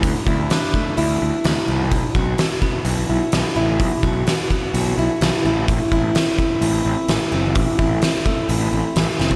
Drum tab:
HH |o---o---o---o---|o---o---o---o---|o---o---o---o---|o---o---o---o---|
SD |----o-------o---|----o-------o---|----o-------o---|----o-------o---|
FT |----------------|----------------|----------------|----------------|
BD |o-o---o---------|o-o---o---------|o-o---o---------|o-o---o---------|

HH |o---o---o---o---|
SD |----o-------o-o-|
FT |---------------o|
BD |o-o---o---------|